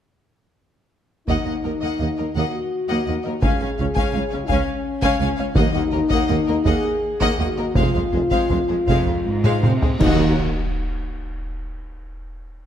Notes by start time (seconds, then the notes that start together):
1.27 D#2 D#3 A#3 D#4 D#5 F#5, taiko
1.45 D#2 A#3 D#5 F#5
1.64 D#2 A#3 A#4 D#5
1.81 D#2 A#3 D#5 F#5
2.00 D#2 A#3 D#5 F#5
2.17 D#2 A#3 A#4 D#5
2.35 D#2 A#3 F#4 D#5 F#5
2.89 D#2 A#3 D#5 F#5
3.06 D#2 A#3 D#5 F#5
3.23 D#2 A#3 A#4 D#5
3.41 C#2 C#4 G#4 F5 G#5, taiko
3.60 C#2 C#4 F5 G#5
3.78 C#2 C#4 C#5 F5
3.94 C#2 C#4 F5 G#5, taiko
4.12 C#2 C#4 F5 G#5
4.30 C#2 C#4 C#5 F5
4.47 C#2 C#4 F5 G#5, taiko
4.52 C#4
5.01 C#2 C#4 F5 G#5, taiko
5.20 C#2 C#4 F5 G#5
5.37 C#2 C#4 C#5 F5
5.54 D#2 D#3 A#3 D#4 D#5 F#5, taiko
5.73 D#2 A#3 D#5 F#5
5.91 D#2 A#3 A#4 D#5
6.09 D#2 A#3 D#5 F#5, taiko
6.28 D#2 A#3 D#5 F#5
6.47 D#2 A#3 A#4 D#5
6.65 D#2 A#3 G#4 D#5 F#5, taiko
7.21 D#2 A#3 D#5 F#5, taiko
7.38 D#2 A#3 F#4 D#5 F#5
7.57 D#2 A#3 A#4 D#5
7.75 F1 F2 G#3 F4 C5 F5, taiko
7.93 F2 G#3 C5 F5, taiko low
8.12 F1 F2 G#3 G#4 C5, taiko low
8.30 F2 G#3 C5 F5, taiko
8.49 F1 F2 G#3 C5 F5, taiko low
8.68 F2 G#3 G#4 C5
8.87 F1 F2 G#3 C5 F5, taiko
9.06 taiko low
9.25 G#2
9.43 G#3 C5 F5, taiko mid
9.63 F1 C3 G#3 C5 F5, taiko mid
9.82 G#3 G#4 C5, taiko low
10.00 D#2 D#3 D#4 F#4 D#5 F#5, concert bass drum, taiko, crash